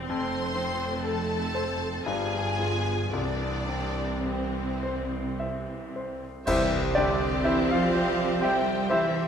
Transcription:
0.00 2.06 C4 medium
0.00 0.11 G4 soft
0.00 0.10 C5 medium
0.00 0.10 G5 medium
0.08 2.07 F1 medium
0.08 2.06 F2 medium
0.08 2.03 F2 medium
0.08 2.03 A3 medium
0.08 1.01 C5 medium
0.08 1.00 C6 medium
0.56 1.34 C4 medium
1.04 1.85 A4 soft
1.04 2.07 A4 medium
1.04 2.06 A5 medium
1.55 2.06 C5 soft
2.06 3.11 G1 soft
2.06 3.10 G2 medium
2.06 3.11 G2 medium
2.06 3.13 F3 soft
2.06 3.13 B3 medium
2.06 3.13 G#4 medium
2.06 3.11 G#5 medium
2.60 3.09 F4 soft
2.60 3.10 G#4 soft
3.12 6.42 C2 medium
3.12 6.26 C2 soft
3.12 6.26 C3 medium
3.12 6.22 E3 medium
3.12 6.22 C4 medium
3.12 4.22 D4 medium
3.12 4.25 D5 medium
3.68 4.59 C4 soft
4.25 5.39 C4 soft
4.25 5.16 G4 soft
4.25 5.38 C5 medium
4.83 5.72 C5 soft
5.39 6.26 E5 medium
5.96 6.46 C5 soft
6.45 7.28 C2 medium
6.45 9.28 C2 medium
6.45 9.28 C3 medium
6.45 6.92 E3 medium
6.45 6.93 E3 medium
6.45 6.69 G3 medium
6.45 9.28 C4 medium
6.45 6.63 C4 medium
6.45 9.28 C4 medium
6.45 6.93 E4 medium
6.45 6.63 G4 medium
6.45 9.28 G4 medium
6.45 6.62 C5 medium
6.45 6.92 C5 medium
6.45 9.28 C5 medium
6.45 6.97 E5 medium
6.45 6.92 E5 medium
6.45 concert bass drum medium
6.45 crash medium
6.72 6.96 C4 medium
6.94 7.43 D3 medium
6.94 7.45 D3 medium
6.94 7.75 C4 medium
6.94 7.13 C4 medium
6.94 7.41 D4 medium
6.94 7.21 E4 medium
6.94 7.12 G4 medium
6.94 7.10 C5 medium
6.94 7.41 D5 medium
6.94 7.47 D5 medium
6.94 7.45 D5 medium
7.22 7.45 G4 medium
7.44 7.69 E3 medium
7.44 7.62 C4 soft
7.44 7.67 E4 medium
7.44 7.70 E4 medium
7.44 7.60 G4 medium
7.44 7.60 C5 medium
7.44 8.24 C5 medium
7.44 7.67 E5 medium
7.44 7.69 E5 medium
7.44 7.71 E5 medium
7.68 8.42 F3 medium
7.68 7.94 C4 medium
7.68 8.41 F5 medium
7.68 8.42 F5 medium
7.68 8.39 F5 medium
7.72 8.44 F3 medium
7.72 8.40 F4 medium
7.93 8.19 G3 medium
7.93 8.09 C4 medium
7.93 8.09 G4 medium
7.93 8.43 G4 soft
7.93 8.09 C5 medium
8.20 8.43 C4 medium
8.41 8.90 G3 medium
8.41 8.92 G3 medium
8.41 8.59 C4 medium
8.41 8.67 E4 medium
8.41 8.57 G4 medium
8.41 8.88 G4 medium
8.41 8.57 C5 medium
8.41 8.88 E5 medium
8.41 8.91 G5 medium
8.41 9.19 G5 medium
8.41 8.89 G5 medium
8.70 8.92 G4 medium
8.89 9.28 E3 medium
8.89 9.06 C4 medium
8.89 9.28 E4 medium
8.89 9.15 E4 medium
8.89 9.05 G4 medium
8.89 9.28 C5 medium
8.89 9.06 C5 medium
8.89 9.28 E5 medium
9.14 9.28 C4 medium

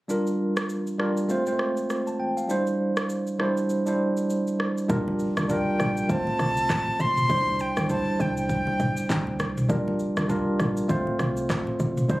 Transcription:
0.08 0.71 G3 medium
0.08 0.72 D4 medium
0.08 0.72 F4 medium
0.08 0.72 A#4 medium
0.08 shaker medium
0.27 shaker soft
0.57 cross-stick loud
0.57 shaker soft
0.69 shaker medium
0.87 shaker soft
0.98 1.29 G3 medium
0.98 1.29 D4 medium
0.98 1.29 F4 medium
0.98 1.30 A#4 medium
0.98 cross-stick medium
1.17 shaker medium
1.28 1.43 A3 medium
1.28 1.43 C4 medium
1.28 1.44 F4 medium
1.28 1.44 C5 loud
1.28 shaker medium
1.46 1.52 G#3 medium
1.46 2.17 C4 medium
1.46 2.18 F4 medium
1.46 2.18 C5 medium
1.46 shaker medium
1.52 2.20 A3 medium
1.59 cross-stick medium
1.77 shaker medium
1.90 cross-stick medium
1.90 shaker medium
2.07 2.19 A5 medium
2.07 shaker soft
2.20 2.36 G5 medium
2.37 2.66 F5 medium
2.37 shaker medium
2.48 3.11 G3 medium
2.48 3.12 D4 medium
2.48 3.12 E4 medium
2.48 3.13 C5 medium
2.48 shaker medium
2.67 shaker soft
2.97 cross-stick loud
2.97 shaker soft
3.10 shaker medium
3.27 shaker soft
3.38 3.70 G3 medium
3.38 3.71 D4 medium
3.38 3.71 E4 medium
3.38 3.71 C5 medium
3.38 cross-stick medium
3.57 shaker medium
3.69 shaker medium
3.86 4.57 G3 medium
3.86 4.57 D4 medium
3.86 4.58 E4 medium
3.86 4.58 C5 medium
3.86 shaker medium
4.17 shaker medium
4.30 shaker medium
4.47 shaker soft
4.60 cross-stick medium
4.78 shaker medium
4.88 5.28 A#1 loud
4.88 5.32 G3 medium
4.88 5.33 D4 medium
4.88 5.33 F4 medium
4.88 5.33 A#4 loud
4.88 kick loud
4.88 low conga medium
4.88 shaker medium
5.08 high conga medium
5.19 shaker soft
5.37 5.62 C2 medium
5.37 cross-stick loud
5.37 shaker medium
5.48 6.09 G3 medium
5.48 6.09 D4 medium
5.48 6.09 F4 medium
5.48 6.10 A#4 medium
5.48 6.12 G5 medium
5.48 kick loud
5.48 shaker medium
5.80 6.04 A#1 medium
5.80 cross-stick medium
5.80 low conga medium
5.80 shaker soft
5.97 shaker medium
6.08 6.34 A1 loud
6.08 7.06 A3 medium
6.08 7.06 C4 medium
6.08 7.07 F4 medium
6.08 7.07 C5 medium
6.08 7.02 A5 loud
6.08 kick loud
6.08 shaker medium
6.27 high conga medium
6.39 6.64 C2 loud
6.39 cross-stick medium
6.39 mid tom medium
6.39 high conga medium
6.39 shaker medium
6.57 shaker loud
6.70 6.94 A1 loud
6.70 kick medium
6.70 cross-stick medium
6.70 clap medium
6.70 low conga medium
6.70 shaker medium
6.87 high conga medium
7.00 7.24 A1 loud
7.00 7.62 C6 loud
7.00 high conga medium
7.00 shaker medium
7.17 mid tom medium
7.17 shaker medium
7.28 7.68 C2 loud
7.28 7.72 G3 medium
7.28 7.73 D4 medium
7.28 7.73 E4 medium
7.28 7.73 C5 medium
7.28 kick loud
7.28 low conga medium
7.28 shaker medium
7.48 high conga medium
7.59 7.90 G5 loud
7.59 shaker medium
7.77 8.02 D2 medium
7.77 cross-stick loud
7.77 shaker medium
7.88 8.73 G3 medium
7.88 8.73 D4 medium
7.88 8.74 E4 medium
7.88 8.74 C5 medium
7.88 8.22 A5 loud
7.88 kick loud
7.88 shaker medium
8.20 8.58 C2 loud
8.20 8.38 G5 medium
8.20 low conga medium
8.20 shaker soft
8.37 9.36 G5 medium
8.37 shaker medium
8.49 kick loud
8.49 shaker medium
8.67 high conga medium
8.80 9.04 G1 medium
8.80 mid tom medium
8.80 high conga medium
8.80 shaker medium
8.97 shaker loud
9.10 9.41 D2 loud
9.10 kick medium
9.10 clap medium
9.10 low conga medium
9.10 shaker medium
9.27 high conga medium
9.40 9.64 C2 loud
9.40 cross-stick loud
9.40 high conga medium
9.40 shaker medium
9.58 mid tom medium
9.58 shaker medium
9.68 10.08 A#1 loud
9.68 10.12 G3 medium
9.68 10.13 D4 medium
9.68 10.13 F4 medium
9.68 10.13 A#4 loud
9.68 kick loud
9.68 low conga medium
9.68 shaker medium
9.88 high conga medium
9.99 shaker soft
10.17 10.42 C2 medium
10.17 cross-stick loud
10.17 shaker medium
10.28 10.89 G3 medium
10.28 10.89 D4 medium
10.28 10.89 F4 medium
10.28 10.90 A#4 loud
10.28 kick medium
10.28 shaker medium
10.60 10.84 A#1 medium
10.60 cross-stick medium
10.60 low conga medium
10.60 shaker soft
10.77 shaker medium
10.88 11.14 A1 loud
10.88 11.86 A3 loud
10.88 11.86 C4 medium
10.88 11.87 F4 medium
10.88 11.87 C5 loud
10.88 kick loud
10.88 shaker medium
11.07 high conga medium
11.19 11.44 C2 medium
11.19 cross-stick loud
11.19 mid tom medium
11.19 high conga medium
11.19 shaker medium
11.37 shaker medium
11.50 11.74 A1 loud
11.50 kick medium
11.50 cross-stick medium
11.50 clap medium
11.50 low conga medium
11.50 shaker medium
11.67 high conga medium
11.80 12.04 A1 loud
11.80 high conga medium
11.80 shaker medium
11.97 mid tom loud
11.97 shaker medium
12.08 12.20 C2 loud
12.08 12.20 G3 medium
12.08 12.20 D4 medium
12.08 12.20 E4 medium
12.08 12.20 C5 loud
12.08 kick loud
12.08 low conga medium
12.08 shaker medium

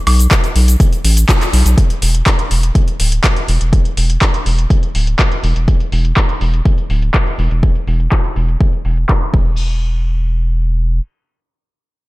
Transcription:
0.07 0.27 B1 loud
0.07 open hi-hat loud
0.07 high woodblock medium
0.19 closed hi-hat soft
0.19 shaker medium
0.31 kick loud
0.31 clap loud
0.31 closed hi-hat loud
0.31 shaker medium
0.44 closed hi-hat soft
0.44 shaker soft
0.56 0.76 B1 loud
0.56 open hi-hat medium
0.68 closed hi-hat soft
0.68 shaker medium
0.80 kick loud
0.80 closed hi-hat medium
0.80 shaker medium
0.93 closed hi-hat soft
0.93 shaker soft
1.04 1.25 A1 medium
1.04 open hi-hat loud
1.17 closed hi-hat soft
1.17 shaker medium
1.29 kick loud
1.29 clap loud
1.29 closed hi-hat loud
1.29 shaker medium
1.41 clap soft
1.41 closed hi-hat soft
1.41 shaker soft
1.53 1.64 B1 medium
1.53 open hi-hat medium
1.66 1.76 B1 loud
1.66 closed hi-hat soft
1.66 shaker medium
1.78 kick loud
1.78 closed hi-hat loud
1.90 closed hi-hat soft
2.02 2.22 E1 loud
2.02 open hi-hat loud
2.15 closed hi-hat soft
2.26 kick loud
2.26 clap loud
2.26 closed hi-hat loud
2.39 closed hi-hat soft
2.51 2.71 E1 loud
2.51 open hi-hat medium
2.63 closed hi-hat soft
2.75 kick loud
2.75 closed hi-hat medium
2.88 closed hi-hat soft
2.99 3.20 D1 medium
2.99 open hi-hat loud
3.12 closed hi-hat soft
3.24 kick loud
3.24 clap loud
3.24 closed hi-hat loud
3.37 closed hi-hat soft
3.48 3.59 E1 loud
3.48 open hi-hat medium
3.61 3.81 E1 medium
3.61 closed hi-hat soft
3.73 kick loud
3.73 closed hi-hat medium
3.85 closed hi-hat soft
3.97 4.18 E1 loud
3.97 open hi-hat loud
4.10 closed hi-hat soft
4.22 kick loud
4.22 clap loud
4.22 closed hi-hat medium
4.34 closed hi-hat soft
4.46 4.66 E1 loud
4.46 open hi-hat medium
4.58 closed hi-hat soft
4.70 kick loud
4.70 closed hi-hat medium
4.83 closed hi-hat soft
4.95 5.15 D1 medium
4.95 open hi-hat loud
5.07 closed hi-hat soft
5.19 kick loud
5.19 clap loud
5.19 closed hi-hat medium
5.32 closed hi-hat soft
5.43 5.54 E1 loud
5.43 open hi-hat loud
5.56 5.76 E1 medium
5.56 closed hi-hat soft
5.68 kick loud
5.68 closed hi-hat medium
5.80 closed hi-hat soft
5.92 6.13 E1 loud
5.92 open hi-hat loud
6.05 closed hi-hat soft
6.17 kick loud
6.17 clap loud
6.17 closed hi-hat medium
6.29 closed hi-hat soft
6.41 6.62 E1 loud
6.41 open hi-hat medium
6.54 closed hi-hat soft
6.65 kick loud
6.65 closed hi-hat medium
6.78 closed hi-hat soft
6.90 7.10 D1 medium
6.90 open hi-hat loud
7.02 closed hi-hat soft
7.14 kick loud
7.14 clap loud
7.14 closed hi-hat medium
7.27 closed hi-hat soft
7.39 7.49 E1 loud
7.39 open hi-hat medium
7.51 7.71 E1 medium
7.51 closed hi-hat soft
7.63 kick loud
7.63 closed hi-hat medium
7.75 closed hi-hat soft
7.87 8.08 E1 loud
7.87 open hi-hat loud
8.00 closed hi-hat soft
8.12 kick loud
8.12 clap loud
8.12 closed hi-hat medium
8.24 closed hi-hat soft
8.36 8.57 E1 loud
8.36 open hi-hat loud
8.49 closed hi-hat soft
8.61 kick loud
8.61 closed hi-hat medium
8.73 closed hi-hat soft
8.85 9.05 E1 medium
8.85 open hi-hat loud
8.97 closed hi-hat soft
9.09 kick loud
9.09 clap loud
9.09 closed hi-hat medium
9.22 closed hi-hat soft
9.34 11.00 E1 loud
9.34 kick loud
9.34 crash medium

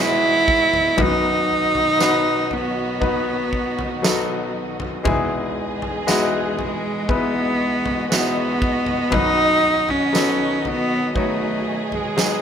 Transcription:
0.00 0.95 E2 medium
0.00 0.95 B2 medium
0.00 12.42 B2 medium
0.00 0.95 E3 medium
0.00 1.00 E3 medium
0.00 1.00 G3 medium
0.00 0.95 G#3 medium
0.00 1.00 G#3 medium
0.00 0.97 B3 medium
0.00 0.97 D#4 medium
0.00 0.94 E4 medium
0.00 1.03 E4 loud
0.00 0.97 F#4 medium
0.00 0.94 G#4 medium
0.00 0.98 B4 medium
0.00 0.93 D#5 medium
0.00 5.02 D#5 medium
0.48 kick loud
0.74 floor tom medium
0.96 5.01 B1 medium
0.96 5.01 F#2 medium
0.96 5.02 D#3 medium
0.96 1.94 F#3 medium
0.96 5.02 F#3 medium
0.96 1.94 B3 medium
0.96 1.95 D#4 medium
0.96 1.95 F#4 medium
0.96 5.02 F#4 medium
0.96 1.95 B4 medium
0.96 kick loud
0.96 floor tom loud
1.01 2.55 D#4 loud
1.75 floor tom medium
1.99 2.96 F#3 medium
1.99 2.96 B3 medium
1.99 2.96 D#4 medium
1.99 2.97 F#4 medium
1.99 2.97 B4 medium
1.99 snare loud
1.99 tambourine medium
2.51 4.56 B3 medium
2.51 floor tom medium
3.00 3.98 F#3 medium
3.00 3.98 B3 medium
3.00 3.98 D#4 medium
3.00 3.98 F#4 medium
3.00 3.98 B4 medium
3.00 kick medium
3.00 floor tom medium
3.53 kick medium
3.79 floor tom medium
4.02 5.00 F#3 medium
4.02 5.00 B3 medium
4.02 5.00 D#4 medium
4.02 5.00 F#4 medium
4.02 5.00 A4 medium
4.02 snare loud
4.02 tambourine medium
4.80 floor tom medium
5.03 9.08 E2 medium
5.03 9.08 B2 medium
5.03 9.07 E3 medium
5.03 6.01 G#3 medium
5.03 9.08 G#3 medium
5.03 6.01 B3 medium
5.03 6.01 D#4 medium
5.03 6.01 E4 medium
5.03 7.06 G#4 medium
5.03 6.02 G#4 medium
5.03 12.42 D#5 medium
5.03 kick loud
5.03 floor tom loud
5.82 floor tom medium
6.07 7.04 G#3 medium
6.07 7.04 B3 medium
6.07 7.04 D#4 medium
6.07 7.04 E4 medium
6.07 7.04 F#4 loud
6.07 snare medium
6.07 tambourine medium
6.58 7.10 G#3 medium
6.58 floor tom medium
7.07 8.05 G#3 medium
7.07 8.10 B3 loud
7.07 8.05 B3 medium
7.07 8.05 D#4 medium
7.07 8.06 E4 medium
7.07 11.11 F#4 medium
7.07 8.06 B4 medium
7.07 kick medium
7.07 floor tom medium
7.86 floor tom medium
8.10 9.07 G#3 medium
8.10 9.07 B3 medium
8.10 9.15 B3 medium
8.10 9.07 D#4 medium
8.10 9.07 E4 medium
8.10 9.07 F#4 medium
8.10 snare loud
8.10 tambourine medium
8.62 kick loud
8.86 floor tom medium
9.10 12.42 B1 medium
9.10 12.42 F#2 medium
9.10 12.42 D#3 medium
9.10 10.08 F#3 medium
9.10 12.42 F#3 medium
9.10 10.08 B3 medium
9.10 10.08 D#4 medium
9.10 9.91 D#4 loud
9.10 10.08 F#4 medium
9.10 10.08 B4 medium
9.10 kick loud
9.10 floor tom loud
9.89 10.69 C#4 loud
9.89 floor tom medium
10.13 11.10 F#3 medium
10.13 11.10 B3 medium
10.13 11.10 D#4 medium
10.13 11.10 F#4 medium
10.13 11.10 A4 medium
10.13 snare medium
10.13 tambourine medium
10.65 11.17 B3 loud
10.65 floor tom medium
11.15 12.12 F#3 medium
11.15 11.96 A3 medium
11.15 12.12 B3 medium
11.15 12.12 D#4 medium
11.15 12.12 F#4 medium
11.15 12.42 G#4 medium
11.15 12.12 C#5 medium
11.15 kick medium
11.92 12.42 G#3 medium
11.92 floor tom medium
12.16 12.42 F#3 medium
12.16 12.42 B3 medium
12.16 12.42 D#4 medium
12.16 12.42 F#4 medium
12.16 12.42 G#4 medium
12.16 snare loud
12.16 tambourine medium

